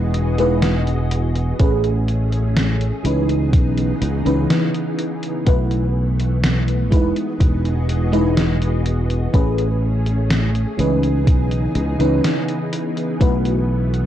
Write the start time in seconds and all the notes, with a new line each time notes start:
Already playing: E1 E3 G#3 B3 D#4 E4 F#4 G#4 B4 D#5
0.14 closed hi-hat
0.38 G#3 D#4 E4 B4, closed hi-hat
0.62 snare, closed hi-hat
0.87 closed hi-hat
1.11 closed hi-hat
1.36 closed hi-hat
1.59 A1 A3 C#4 G#4 B4, kick, closed hi-hat
1.84 closed hi-hat
2.08 closed hi-hat
2.32 closed hi-hat
2.57 snare, closed hi-hat
2.81 closed hi-hat
3.03 C#2 C#3 E3 B3 C#4 D#4 B4, closed hi-hat
3.29 closed hi-hat
3.53 B1, kick, closed hi-hat
3.78 closed hi-hat
4.02 C#2, closed hi-hat
4.25 C#2 E3 C#4 D#4 B4, closed hi-hat
4.50 snare, closed hi-hat
4.74 closed hi-hat
4.99 closed hi-hat
5.23 closed hi-hat
5.46 B1 A3 B3 E4 F#4 B4, kick, closed hi-hat
5.71 closed hi-hat
6.20 closed hi-hat
6.44 snare, closed hi-hat
6.68 closed hi-hat
6.90 E1 E3 G#3 D#4 E4 F#4 G#4 B4 D#5, kick, closed hi-hat
7.16 closed hi-hat
7.40 E1, kick, closed hi-hat
7.65 closed hi-hat
7.89 closed hi-hat
8.12 G#3 D#4 E4 B4, closed hi-hat
8.37 snare, closed hi-hat
8.62 closed hi-hat
8.86 closed hi-hat
9.10 closed hi-hat
9.33 A1 A3 C#4 G#4 B4, kick, closed hi-hat
9.58 closed hi-hat
10.06 closed hi-hat
10.30 snare, closed hi-hat
10.55 closed hi-hat
10.77 C#2 C#3 E3 B3 C#4 D#4 B4, closed hi-hat
11.03 closed hi-hat
11.27 B1, kick, closed hi-hat
11.51 closed hi-hat
11.75 C#2, closed hi-hat
11.99 C#2 E3 C#4 D#4 B4, closed hi-hat
12.24 snare, closed hi-hat
12.49 closed hi-hat
12.73 closed hi-hat
12.97 closed hi-hat
13.20 B1 A3 E4 F#4 B4, kick, closed hi-hat
13.45 closed hi-hat
13.94 closed hi-hat